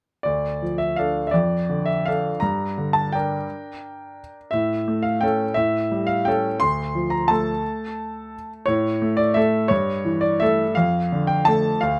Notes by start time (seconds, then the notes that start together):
0.23 D2 D5
0.62 F3
0.78 E5
0.96 D4 A4 F5
1.27 E5
1.31 F2 D5
1.70 D3
1.86 E5
2.06 D4 A4 F5
2.40 G2 A#5
2.78 D3
2.93 A5
3.12 D4 A#4 G5
4.51 A2 E5
4.88 A3
5.03 F5
5.21 C#4 A4 G5
5.54 A2 E5
5.92 G3
6.07 F5
6.25 C#4 A4 G5
6.60 D2 C6
6.95 F3
7.10 A#5
7.28 A3 A4 A5
8.66 A2 C#5
9.02 A3
9.17 D5
9.34 A3 A4 E5
9.68 G2 C#5
10.05 E3
10.21 D5
10.40 A3 A4 E5
10.75 F2 F5
11.12 D3
11.27 G5
11.45 A3 A4 A5
11.81 D2 F5